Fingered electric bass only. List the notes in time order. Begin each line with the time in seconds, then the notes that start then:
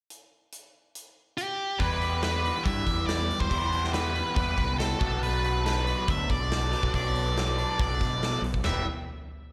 1.79 E2
2.66 G2
2.87 E2
3.41 E2
3.51 E2
4.37 E2
4.58 C2
5.01 B1
5.22 B1
6.08 D2
6.30 B1
6.83 B1
6.94 B1
7.79 B1
8.01 B2
8.42 B1
8.64 E1